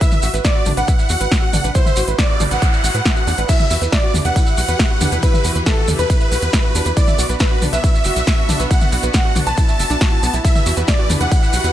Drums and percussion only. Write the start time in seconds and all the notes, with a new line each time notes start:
0.01 kick, closed hi-hat, maracas
0.12 mid tom, maracas
0.22 open hi-hat, maracas
0.34 closed hi-hat, maracas
0.44 kick, snare, closed hi-hat, maracas
0.66 open hi-hat, mid tom, maracas
0.77 closed hi-hat, maracas
0.88 kick, closed hi-hat, maracas
0.99 maracas
1.09 open hi-hat, maracas
1.20 closed hi-hat, maracas
1.32 kick, snare, closed hi-hat, maracas
1.53 open hi-hat, mid tom, maracas
1.64 closed hi-hat, maracas
1.75 kick, closed hi-hat, maracas
1.86 mid tom, maracas
1.96 open hi-hat, maracas
2.08 closed hi-hat, maracas
2.19 kick, snare, closed hi-hat, maracas
2.40 open hi-hat, mid tom, maracas
2.51 closed hi-hat, maracas
2.62 kick, closed hi-hat, maracas
2.73 maracas
2.84 open hi-hat, maracas
2.94 closed hi-hat, maracas
3.05 kick, snare, closed hi-hat, maracas
3.16 maracas
3.27 open hi-hat, maracas
3.38 closed hi-hat, maracas
3.49 kick, closed hi-hat, crash, ride, maracas
3.59 mid tom, maracas
3.70 open hi-hat, maracas
3.82 closed hi-hat, maracas
3.92 kick, snare, closed hi-hat, ride, maracas
4.14 open hi-hat, mid tom, maracas
4.25 closed hi-hat, maracas
4.36 kick, closed hi-hat, ride, maracas
4.47 maracas
4.57 open hi-hat, maracas
4.68 closed hi-hat, maracas
4.79 kick, snare, closed hi-hat, ride, maracas
5.01 open hi-hat, mid tom, maracas
5.12 closed hi-hat, maracas
5.23 kick, closed hi-hat, ride, maracas
5.34 mid tom, maracas
5.44 open hi-hat, maracas
5.55 closed hi-hat, maracas
5.66 kick, snare, closed hi-hat, ride, maracas
5.88 open hi-hat, mid tom, maracas
5.99 closed hi-hat, maracas
6.10 kick, closed hi-hat, ride, maracas
6.20 maracas
6.32 open hi-hat, maracas
6.42 closed hi-hat, maracas
6.53 kick, snare, closed hi-hat, ride, maracas
6.75 open hi-hat, maracas
6.85 closed hi-hat, maracas
6.97 kick, closed hi-hat, ride, maracas
7.07 mid tom, maracas
7.18 open hi-hat, maracas
7.29 closed hi-hat, maracas
7.40 kick, snare, closed hi-hat, ride, maracas
7.62 open hi-hat, mid tom, maracas
7.73 closed hi-hat, maracas
7.84 kick, closed hi-hat, ride, maracas
7.95 maracas
8.04 open hi-hat, maracas
8.16 closed hi-hat, maracas
8.27 kick, snare, closed hi-hat, ride, maracas
8.49 open hi-hat, mid tom, maracas
8.60 closed hi-hat, maracas
8.71 kick, closed hi-hat, ride, maracas
8.81 mid tom, maracas
8.92 open hi-hat, maracas
9.03 closed hi-hat, maracas
9.14 kick, snare, closed hi-hat, ride, maracas
9.36 open hi-hat, mid tom, maracas
9.47 closed hi-hat, maracas
9.57 kick, closed hi-hat, ride, maracas
9.69 maracas
9.79 open hi-hat, maracas
9.90 closed hi-hat, maracas
10.01 kick, snare, closed hi-hat, ride, maracas
10.23 open hi-hat, maracas
10.34 closed hi-hat, maracas
10.45 kick, closed hi-hat, ride, maracas
10.55 mid tom, maracas
10.66 open hi-hat, maracas
10.76 closed hi-hat, maracas
10.88 kick, snare, closed hi-hat, ride, maracas
11.10 open hi-hat, mid tom, maracas
11.21 closed hi-hat, maracas
11.31 kick, closed hi-hat, ride, maracas
11.43 maracas
11.53 open hi-hat, maracas
11.64 closed hi-hat, maracas